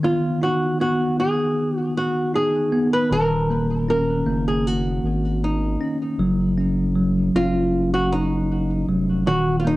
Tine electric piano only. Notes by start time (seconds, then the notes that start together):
Already playing: D#3
0.03 B3
0.42 D#4
0.80 B3
2.34 D#4
2.72 B3
3.11 D#3
3.50 A#3
3.88 C#4
4.26 A#3
5.81 C#4
6.19 F#3
6.58 C#4
6.96 F#3
7.36 C#4
8.89 F#3
9.27 D#3
9.64 A#3